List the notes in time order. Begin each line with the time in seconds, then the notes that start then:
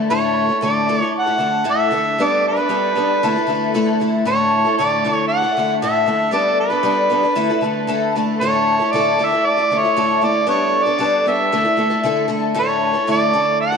Already playing: A4
0.10 A2 D3 A3 E4 A4 C#5
0.49 A3 E4 A4
0.61 A2 D3 A3 E4 A4 D5
0.88 D3 A3 E4 A4
0.99 E4 A4 C#5
1.03 A3
1.19 F#5
1.26 A3 E4 A4
1.38 D3 A3 E4 A4
1.64 A2 D3 A3 E4 A4
1.71 E5
1.91 D3 A3 E4 A4
2.18 G3 B3 D4 A4
2.24 D5
2.48 B4
2.56 B3 D4 A4
2.69 G3 B3 D4 A4
2.95 G3 B3 D4 A4
3.23 D3 A3 E4 A4
3.36 A3 E4 A4
3.47 D3 A3 E4 A4
3.74 D3 A3 E4 A4
4.00 D3 A3 E4 A4
4.25 A2 D3 A3 E4 A4 C#5
4.64 A3 E4 A4
4.78 A2 D3 A3 E4 A4 D5
5.04 D3 A3 E4 A4
5.13 C#5
5.28 F#5
5.42 A3 E4 A4
5.57 D3 A3 E4 A4
5.82 A2 D3 A3 E4 A4 E5
6.06 D3 A3 E4 A4
6.31 G3 B3 D4 A4 D5
6.60 B4
6.70 B3 D4 A4
6.83 G3 B3 D4 A4
7.10 G3 B3 D4 A4
7.23 B3 D4 A4
7.35 D3 A3 E4 A4
7.49 A3 E4 A4
7.61 D3 A3 E4 A4
7.87 D3 A3 E4 A4
8.16 D3 A3 E4 A4
8.40 A2 D3 A3 E4 A4 C#5
8.80 A3 E4 A4
8.92 A2 D3 A3 E4 A4 D5
9.19 D3 A3 E4 A4
9.26 E5
9.32 A3 E4 A4
9.46 D5
9.57 A3 E4 A4
9.70 D3 A3 E4 A4
9.78 C#5
9.83 A3 E4 A4
9.96 A2 D3 A3 E4 A4
10.21 D3 A3 E4 A4 D5
10.47 G3 B3 D4 A4 C#5
10.84 D4 A4 D5
10.88 B3
10.99 G3 B3 D4 A4
11.26 G3 B3 D4 A4 E5
11.52 D3 A3 E4 A4
11.64 A3 E4 A4
11.77 D3 A3 E4 A4
11.90 A3 E4 A4
12.04 D3 A3 E4 A4
12.28 D3 A3 E4 A4
12.54 A2 D3 A3 E4 A4
12.59 C#5
12.93 A3 E4 A4
13.07 A2 D3 A3 E4 A4
13.11 D5
13.33 D3 A3 E4 A4
13.61 F#5
13.72 A4